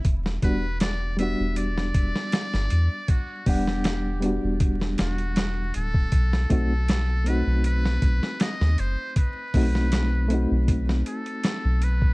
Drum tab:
HH |x-x-x-x-x-x-x-x-|x-o-x-x-x-xxx-x-|x-x-x-x-x-x-x-x-|x-o-x-x-x-xxx-x-|
SD |-o--o----o-ooo--|---oo----oo-o---|-o--o----o-ooo--|---oo----o--o---|
BD |o-o-------o-----|o-o-----o------o|o-o-------o-----|o-o-----o------o|